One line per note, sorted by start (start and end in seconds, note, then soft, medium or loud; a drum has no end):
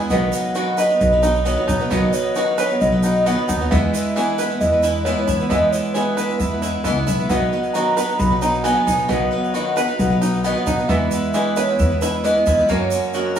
0.00 0.12 E2 medium
0.00 0.12 E3 medium
0.00 0.13 G#3 medium
0.00 0.11 B3 medium
0.00 0.10 B3 medium
0.00 0.11 E4 medium
0.00 0.13 E4 medium
0.00 0.11 E4 medium
0.00 0.10 G#4 medium
0.00 0.11 B4 medium
0.00 0.11 G#5 medium
0.10 0.28 B1 medium
0.10 1.87 B1 medium
0.10 0.33 B2 medium
0.10 1.87 B2 medium
0.10 0.33 D#3 medium
0.10 0.50 F#3 loud
0.10 0.32 F#3 medium
0.10 0.50 B3 medium
0.10 1.01 B3 medium
0.10 0.32 B3 medium
0.10 0.50 D#4 medium
0.10 0.33 D#4 medium
0.10 0.50 B4 medium
0.10 0.33 B4 medium
0.10 0.50 D#5 loud
0.10 0.55 F#5 medium
0.10 shaker medium
0.32 0.55 F#3 medium
0.32 0.55 B3 medium
0.32 0.55 D#4 medium
0.32 0.55 B4 medium
0.32 shaker loud
0.55 0.78 B2 medium
0.55 0.78 D#3 medium
0.55 0.94 F#3 medium
0.55 0.77 F#3 medium
0.55 0.94 B3 medium
0.55 0.77 B3 medium
0.55 0.95 D#4 medium
0.55 0.78 D#4 medium
0.55 1.45 F#4 medium
0.55 0.95 B4 medium
0.55 0.79 B4 medium
0.55 0.94 D#5 medium
0.55 0.79 F#5 loud
0.55 shaker medium
0.78 0.89 F#3 medium
0.78 0.89 B3 medium
0.78 0.89 D#4 medium
0.78 1.68 B4 medium
0.78 0.88 B4 medium
0.78 1.47 D#5 loud
0.78 shaker medium
0.89 1.13 F#3 soft
0.89 1.12 B3 soft
0.89 1.12 D#4 medium
0.89 1.11 B4 medium
0.89 shaker soft
1.00 1.53 B1 loud
1.00 1.40 F#3 medium
1.00 1.40 B3 medium
1.00 1.40 D#4 medium
1.00 1.40 B4 medium
1.00 1.40 D#5 medium
1.00 shaker medium
1.12 1.22 F#3 soft
1.12 1.23 B3 soft
1.12 1.24 D#4 medium
1.12 1.23 B4 medium
1.23 1.45 F#3 medium
1.23 1.45 B3 medium
1.23 1.66 D#4 medium
1.23 1.46 D#4 medium
1.23 1.46 B4 medium
1.23 shaker medium
1.35 shaker soft
1.45 1.57 B2 medium
1.45 1.57 D#3 medium
1.45 1.85 F#3 medium
1.45 1.57 F#3 medium
1.45 1.89 B3 medium
1.45 1.85 B3 medium
1.45 1.56 B3 medium
1.45 1.85 D#4 medium
1.45 1.56 D#4 medium
1.45 1.85 B4 medium
1.45 1.55 B4 medium
1.45 1.92 C#5 loud
1.45 1.85 D#5 medium
1.45 shaker medium
1.57 1.80 F#3 soft
1.57 1.79 B3 medium
1.57 1.79 D#4 medium
1.57 1.78 B4 medium
1.68 1.86 B2 medium
1.68 2.58 D#4 medium
1.68 shaker medium
1.79 1.90 F#3 soft
1.79 1.91 B3 medium
1.79 1.91 D#4 medium
1.79 1.91 B4 medium
1.79 shaker soft
1.90 3.67 B1 medium
1.90 2.08 B1 loud
1.90 2.13 B2 medium
1.90 3.67 B2 medium
1.90 2.13 D#3 medium
1.90 2.30 F#3 loud
1.90 2.12 F#3 medium
1.90 2.81 B3 medium
1.90 2.30 B3 medium
1.90 2.12 B3 medium
1.90 2.30 D#4 loud
1.90 2.13 D#4 medium
1.90 2.30 B4 medium
1.90 2.14 B4 medium
1.90 2.14 D#5 medium
1.90 2.30 D#5 loud
1.90 shaker medium
2.13 2.35 F#3 medium
2.13 2.35 B3 medium
2.13 2.36 D#4 medium
2.13 2.36 B4 medium
2.13 2.38 C#5 medium
2.13 shaker medium
2.35 2.58 B2 medium
2.35 2.58 D#3 medium
2.35 2.57 F#3 medium
2.35 2.75 F#3 medium
2.35 2.75 B3 medium
2.35 2.58 B3 medium
2.35 2.75 D#4 medium
2.35 2.58 D#4 medium
2.35 3.26 F#4 medium
2.35 2.60 B4 loud
2.35 2.75 B4 medium
2.35 2.59 B4 loud
2.35 2.75 D#5 medium
2.35 shaker medium
2.58 2.69 F#3 medium
2.58 2.69 B3 medium
2.58 2.69 D#4 medium
2.58 3.48 B4 loud
2.58 2.68 B4 medium
2.58 2.80 C#5 medium
2.58 shaker loud
2.69 2.93 F#3 soft
2.69 2.92 B3 soft
2.69 2.92 D#4 medium
2.69 2.91 B4 medium
2.69 shaker soft
2.81 3.33 B1 loud
2.81 3.20 F#3 medium
2.81 3.20 B3 medium
2.81 3.20 D#4 medium
2.81 3.20 B4 medium
2.81 3.27 D#5 loud
2.81 3.20 D#5 medium
2.81 shaker medium
2.92 3.03 F#3 soft
2.92 3.03 B3 medium
2.92 3.04 D#4 soft
2.92 3.03 B4 medium
3.03 3.25 F#3 medium
3.03 3.26 B3 medium
3.03 3.48 D#4 medium
3.03 3.26 D#4 medium
3.03 3.26 B4 medium
3.03 shaker loud
3.15 shaker soft
3.26 3.37 B2 medium
3.26 3.37 D#3 medium
3.26 3.65 F#3 medium
3.26 3.37 F#3 medium
3.26 3.70 B3 medium
3.26 3.65 B3 medium
3.26 3.38 B3 medium
3.26 3.65 D#4 medium
3.26 3.37 D#4 medium
3.26 3.65 B4 medium
3.26 3.37 B4 medium
3.26 3.65 D#5 medium
3.26 3.47 F#5 loud
3.26 shaker medium
3.38 3.60 F#3 soft
3.38 3.60 B3 medium
3.38 3.59 D#4 medium
3.38 3.59 B4 medium
3.48 3.66 D#2 loud
3.48 3.71 D#4 medium
3.48 3.72 F#5 medium
3.48 shaker loud
3.60 3.71 F#3 medium
3.60 3.71 B3 medium
3.60 3.71 D#4 medium
3.60 3.71 B4 medium
3.71 5.47 E2 medium
3.71 3.89 E2 loud
3.71 3.93 E3 medium
3.71 5.47 E3 medium
3.71 4.10 G#3 loud
3.71 3.92 G#3 medium
3.71 4.61 B3 medium
3.71 4.10 B3 medium
3.71 3.93 B3 medium
3.71 4.10 E4 loud
3.71 3.94 E4 medium
3.71 4.10 B4 medium
3.71 3.94 B4 medium
3.71 4.14 E5 loud
3.71 4.10 E5 loud
3.71 shaker medium
3.94 4.15 G#3 medium
3.94 4.16 B3 medium
3.94 4.16 E4 medium
3.94 4.16 B4 medium
3.94 shaker loud
4.15 4.38 E3 medium
4.15 4.55 G#3 medium
4.15 4.37 G#3 medium
4.15 4.55 B3 medium
4.15 4.38 B3 medium
4.15 4.55 E4 medium
4.15 4.39 E4 medium
4.15 5.05 G#4 medium
4.15 4.55 B4 medium
4.15 4.39 B4 medium
4.15 4.61 E5 loud
4.15 4.55 E5 medium
4.15 shaker medium
4.38 4.49 G#3 medium
4.38 4.50 B3 medium
4.38 4.49 E4 medium
4.38 5.28 B4 medium
4.38 4.48 B4 medium
4.38 shaker medium
4.50 4.73 B3 soft
4.50 4.72 E4 medium
4.50 4.71 B4 medium
4.60 5.13 E2 medium
4.60 5.00 G#3 medium
4.60 4.99 B3 medium
4.60 5.00 E4 medium
4.60 5.00 B4 medium
4.60 5.04 D#5 loud
4.60 shaker medium
4.72 4.83 B3 soft
4.72 4.84 E4 medium
4.72 4.83 B4 medium
4.83 5.06 G#3 medium
4.83 5.06 B3 medium
4.83 5.26 E4 medium
4.83 5.06 E4 medium
4.83 5.07 B4 medium
4.83 shaker medium
5.04 5.17 E3 medium
5.04 5.45 G#3 medium
5.04 5.17 G#3 medium
5.04 5.49 B3 medium
5.04 5.44 B3 medium
5.04 5.17 B3 medium
5.04 5.44 E4 medium
5.04 5.17 E4 loud
5.04 5.45 B4 medium
5.04 5.16 B4 medium
5.04 5.50 C#5 loud
5.04 5.45 E5 loud
5.04 shaker medium
5.17 5.40 B3 soft
5.17 5.40 E4 medium
5.17 5.38 B4 medium
5.28 5.46 E3 medium
5.28 6.17 E4 medium
5.28 shaker medium
5.39 5.50 B3 medium
5.39 5.50 E4 medium
5.39 5.51 B4 medium
5.39 shaker soft
5.49 7.26 E2 medium
5.49 5.68 E2 loud
5.49 7.26 E3 medium
5.49 5.73 E3 medium
5.49 5.89 G#3 loud
5.49 5.72 G#3 medium
5.49 6.40 B3 medium
5.49 5.89 B3 loud
5.49 5.73 B3 medium
5.49 5.89 E4 loud
5.49 5.73 E4 medium
5.49 5.89 B4 medium
5.49 5.74 B4 medium
5.49 5.73 D#5 loud
5.49 5.89 E5 loud
5.49 shaker medium
5.72 5.94 G#3 medium
5.72 5.95 B3 medium
5.72 5.95 E4 medium
5.72 5.95 B4 medium
5.72 5.95 C#5 medium
5.72 shaker medium
5.84 shaker soft
5.94 6.18 E3 medium
5.94 6.34 G#3 medium
5.94 6.17 G#3 medium
5.94 6.34 B3 medium
5.94 6.17 B3 medium
5.94 6.34 E4 medium
5.94 6.18 E4 medium
5.94 6.84 G#4 medium
5.94 6.37 B4 loud
5.94 6.34 B4 medium
5.94 6.18 B4 medium
5.94 6.34 E5 medium
5.94 shaker medium
6.17 6.29 G#3 medium
6.17 6.29 B3 medium
6.17 6.29 E4 medium
6.17 7.07 B4 loud
6.17 6.27 B4 medium
6.17 shaker medium
6.29 6.52 B3 soft
6.29 6.51 E4 soft
6.29 6.50 B4 medium
6.29 shaker soft
6.38 6.75 E2 loud
6.38 6.79 G#3 medium
6.38 6.79 B3 medium
6.38 6.79 E4 medium
6.38 6.79 B4 medium
6.38 6.81 E5 loud
6.38 6.79 E5 medium
6.38 shaker medium
6.51 6.62 B3 soft
6.51 6.62 E4 medium
6.51 6.62 B4 medium
6.62 6.84 G#3 medium
6.62 6.85 B3 medium
6.62 7.06 E4 medium
6.62 6.85 E4 medium
6.62 6.85 B4 medium
6.62 shaker medium
6.84 7.05 C#2 medium
6.84 6.96 E3 medium
6.84 7.24 G#3 medium
6.84 6.96 G#3 medium
6.84 7.29 B3 medium
6.84 7.24 B3 medium
6.84 6.97 B3 medium
6.84 7.24 E4 medium
6.84 6.96 E4 medium
6.84 7.24 B4 medium
6.84 6.95 B4 medium
6.84 7.30 E5 loud
6.84 7.24 E5 medium
6.84 shaker medium
6.96 7.19 B3 soft
6.96 7.19 E4 medium
6.96 7.18 B4 medium
7.07 7.28 B1 medium
7.07 7.30 E4 medium
7.07 shaker medium
7.18 7.30 B3 soft
7.18 7.31 E4 soft
7.18 7.30 B4 medium
7.18 shaker soft
7.29 9.05 B1 medium
7.29 7.47 B1 loud
7.29 9.05 B2 medium
7.29 7.52 B2 medium
7.29 7.53 D#3 medium
7.29 7.68 F#3 loud
7.29 7.51 F#3 medium
7.29 7.69 B3 medium
7.29 8.20 B3 medium
7.29 7.52 B3 medium
7.29 7.69 D#4 loud
7.29 7.52 D#4 medium
7.29 7.69 B4 loud
7.29 7.53 B4 medium
7.29 7.69 D#5 loud
7.29 7.73 F#5 loud
7.29 shaker medium
7.52 7.74 F#3 medium
7.52 7.74 B3 medium
7.52 7.74 D#4 medium
7.52 7.75 B4 medium
7.63 shaker soft
7.74 7.97 B2 medium
7.74 7.97 D#3 medium
7.74 8.13 F#3 medium
7.74 7.95 F#3 medium
7.74 8.13 B3 medium
7.74 7.96 B3 medium
7.74 8.13 D#4 medium
7.74 7.97 D#4 medium
7.74 8.64 F#4 medium
7.74 8.13 B4 medium
7.74 7.97 B4 medium
7.74 8.13 D#5 medium
7.74 8.20 A#5 loud
7.74 shaker medium
7.96 8.08 F#3 medium
7.96 8.08 B3 medium
7.96 8.08 D#4 medium
7.96 8.87 B4 medium
7.96 8.06 B4 medium
7.96 shaker loud
8.08 8.31 F#3 soft
8.08 8.31 B3 soft
8.08 8.30 D#4 soft
8.08 8.29 B4 medium
8.18 8.71 B1 loud
8.18 8.58 F#3 medium
8.18 8.59 B3 medium
8.18 8.59 D#4 medium
8.18 8.59 B4 medium
8.18 8.59 D#5 medium
8.18 8.42 B5 loud
8.18 shaker medium
8.30 8.40 F#3 soft
8.30 8.41 B3 medium
8.30 8.42 D#4 soft
8.30 8.42 B4 medium
8.41 8.63 F#3 medium
8.41 8.63 B3 medium
8.41 8.86 D#4 medium
8.41 8.64 D#4 medium
8.41 8.64 B4 medium
8.41 8.63 A#5 loud
8.41 shaker medium
8.54 shaker soft
8.63 8.75 B2 medium
8.63 8.75 D#3 medium
8.63 9.03 F#3 medium
8.63 8.76 F#3 medium
8.63 9.08 B3 medium
8.63 9.03 B3 medium
8.63 8.75 B3 medium
8.63 9.03 D#4 medium
8.63 8.74 D#4 loud
8.63 9.03 B4 medium
8.63 8.74 B4 loud
8.63 9.03 D#5 medium
8.63 9.10 G#5 loud
8.63 shaker medium
8.75 8.98 F#3 medium
8.75 8.98 B3 medium
8.75 8.97 D#4 medium
8.75 8.96 B4 medium
8.87 9.04 B2 medium
8.87 9.77 D#4 medium
8.87 shaker medium
8.97 9.08 F#3 soft
8.97 9.08 B3 medium
8.97 9.08 D#4 medium
8.97 9.08 B4 medium
9.08 10.85 B1 medium
9.08 9.27 B1 medium
9.08 9.31 B2 medium
9.08 10.85 B2 medium
9.08 9.31 D#3 medium
9.08 9.30 F#3 medium
9.08 9.48 F#3 loud
9.08 9.31 B3 medium
9.08 9.99 B3 medium
9.08 9.48 B3 medium
9.08 9.31 D#4 medium
9.08 9.48 D#4 medium
9.08 9.48 B4 medium
9.08 9.32 B4 medium
9.08 9.48 D#5 loud
9.08 9.98 F#5 loud
9.08 shaker medium
9.31 9.53 F#3 medium
9.31 9.54 B3 medium
9.31 9.54 D#4 medium
9.31 9.54 B4 medium
9.44 shaker soft
9.54 9.77 B2 medium
9.54 9.77 D#3 medium
9.54 9.93 F#3 medium
9.54 9.75 F#3 medium
9.54 9.75 B3 medium
9.54 9.94 B3 medium
9.54 9.94 D#4 medium
9.54 9.76 D#4 medium
9.54 10.44 F#4 medium
9.54 9.93 B4 medium
9.54 9.76 B4 medium
9.54 9.94 D#5 medium
9.54 shaker medium
9.76 9.88 F#3 medium
9.76 9.87 B3 medium
9.76 9.87 D#4 medium
9.76 10.67 B4 loud
9.76 9.86 B4 medium
9.76 shaker loud
9.87 10.11 F#3 soft
9.87 10.11 B3 medium
9.87 10.10 D#4 medium
9.87 10.09 B4 medium
9.87 shaker soft
9.99 10.51 B1 loud
9.99 10.38 F#3 medium
9.99 10.38 B3 medium
9.99 10.38 D#4 medium
9.99 10.38 B4 medium
9.99 10.38 D#5 medium
9.99 10.41 F#5 loud
9.99 shaker medium
10.10 10.21 F#3 medium
10.10 10.21 B3 medium
10.10 10.22 D#4 soft
10.10 10.22 B4 medium
10.21 10.44 F#3 medium
10.21 10.44 B3 medium
10.21 10.66 D#4 medium
10.21 10.44 D#4 medium
10.21 10.45 B4 medium
10.21 shaker medium
10.33 shaker soft
10.44 10.56 B2 medium
10.44 10.56 D#3 medium
10.44 10.83 F#3 medium
10.44 10.56 F#3 medium
10.44 10.88 B3 medium
10.44 10.83 B3 medium
10.44 10.56 B3 medium
10.44 10.83 D#4 medium
10.44 10.55 D#4 medium
10.44 10.83 B4 medium
10.44 10.54 B4 loud
10.44 10.83 D#5 loud
10.44 10.89 F#5 loud
10.44 shaker medium
10.55 10.79 F#3 medium
10.55 10.78 B3 soft
10.55 10.77 D#4 medium
10.55 10.77 B4 medium
10.67 10.84 B2 medium
10.67 10.89 D#4 medium
10.67 shaker medium
10.78 10.89 F#3 medium
10.78 10.89 B3 medium
10.78 10.89 D#4 medium
10.78 10.89 B4 medium
10.78 shaker soft
10.88 11.07 E2 loud
10.88 12.65 E2 medium
10.88 12.65 E3 medium
10.88 11.12 E3 medium
10.88 11.28 G#3 loud
10.88 11.10 G#3 medium
10.88 11.79 B3 medium
10.88 11.28 B3 loud
10.88 11.11 B3 medium
10.88 11.28 E4 medium
10.88 11.11 E4 medium
10.88 11.28 B4 loud
10.88 11.12 B4 medium
10.88 11.32 E5 loud
10.88 11.28 E5 loud
10.88 shaker medium
11.11 11.33 G#3 medium
11.11 11.33 B3 medium
11.11 11.34 E4 medium
11.11 11.34 B4 medium
11.11 shaker loud
11.23 shaker soft
11.33 11.57 E3 medium
11.33 11.73 G#3 medium
11.33 11.55 G#3 medium
11.33 11.73 B3 medium
11.33 11.56 B3 medium
11.33 11.73 E4 medium
11.33 11.57 E4 medium
11.33 12.24 G#4 medium
11.33 11.73 B4 medium
11.33 11.57 B4 medium
11.33 11.58 E5 loud
11.33 11.73 E5 medium
11.33 shaker medium
11.56 11.68 G#3 medium
11.56 11.68 B3 medium
11.56 11.68 E4 medium
11.56 12.47 B4 loud
11.56 11.67 B4 medium
11.56 12.01 C#5 loud
11.56 shaker loud
11.68 11.91 B3 soft
11.68 11.90 E4 soft
11.68 11.89 B4 medium
11.68 shaker soft
11.79 12.31 E2 loud
11.79 12.18 G#3 medium
11.79 12.18 B3 medium
11.79 12.18 E4 medium
11.79 12.18 B4 medium
11.79 12.18 E5 loud
11.79 shaker medium
11.90 12.01 B3 soft
11.90 12.02 E4 medium
11.90 12.02 B4 medium
12.01 12.23 G#3 medium
12.01 12.23 B3 medium
12.01 12.46 E4 medium
12.01 12.24 E4 medium
12.01 12.25 B4 loud
12.01 12.24 B4 medium
12.01 shaker loud
12.23 12.35 E3 medium
12.23 12.63 G#3 medium
12.23 12.35 G#3 medium
12.23 12.63 B3 medium
12.23 12.69 B3 medium
12.23 12.36 B3 medium
12.23 12.63 E4 medium
12.23 12.36 E4 medium
12.23 12.63 B4 medium
12.23 12.35 B4 loud
12.23 12.70 D#5 loud
12.23 shaker medium
12.36 12.58 B3 medium
12.36 12.58 E4 medium
12.36 12.57 B4 medium
12.46 12.64 E2 loud
12.46 12.69 E4 medium
12.46 shaker medium
12.58 12.69 B3 soft
12.58 12.69 E4 medium
12.58 12.69 B4 medium
12.68 13.39 F#1 medium
12.68 13.39 F#2 medium
12.68 12.87 F#2 medium
12.68 12.91 F#3 medium
12.68 13.08 F#3 loud
12.68 13.08 A#3 loud
12.68 13.39 A#3 medium
12.68 13.08 C#4 loud
12.68 12.92 C#4 medium
12.68 12.92 F#4 medium
12.68 13.08 A#4 medium
12.68 12.92 A#4 medium
12.68 13.39 C#5 medium
12.68 13.08 C#5 loud
12.68 shaker medium
12.91 13.13 F#3 medium
12.91 13.13 C#4 medium
12.91 13.14 F#4 medium
12.91 13.14 A#4 medium
12.91 shaker loud
13.13 13.39 F#3 medium
13.13 13.35 F#3 medium
13.13 13.39 A#3 medium
13.13 13.39 C#4 medium
13.13 13.36 C#4 medium
13.13 13.39 F#4 medium
13.13 13.36 F#4 medium
13.13 13.39 A#4 medium
13.13 13.37 A#4 medium
13.13 13.39 D#5 medium
13.13 shaker medium
13.36 13.39 F#3 medium
13.36 shaker loud